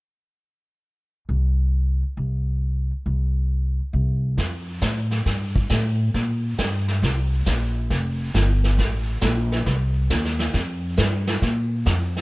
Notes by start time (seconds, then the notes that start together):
1.29 C2
2.17 C2
3.06 C2
3.93 C2
4.38 F2, brush sweep, kick, snare
4.81 A2, kick, snare, hi-hat pedal
5.11 snare
5.26 G2, brush sweep, kick, snare
5.56 kick
5.69 A2, kick, snare, hi-hat pedal
6.14 A#2, brush sweep, kick, snare
6.58 G2, kick, snare, hi-hat pedal
6.88 snare
7.02 C2, brush sweep, kick, snare
7.46 A#1, kick, snare, hi-hat pedal
7.90 F1, brush sweep, kick, snare
8.34 G1, kick, snare, hi-hat pedal
8.64 snare
8.78 A1, brush sweep, kick, snare
9.21 A#1, kick, snare, hi-hat pedal
9.52 snare
9.66 C2, brush sweep, kick, snare
10.10 D#2, kick, snare, hi-hat pedal
10.25 snare
10.39 snare
10.53 F2, brush sweep, kick, snare
10.97 G2, kick, snare, hi-hat pedal
11.27 snare
11.42 A#2, brush sweep, kick, snare
11.86 F2, kick, snare, hi-hat pedal
12.16 snare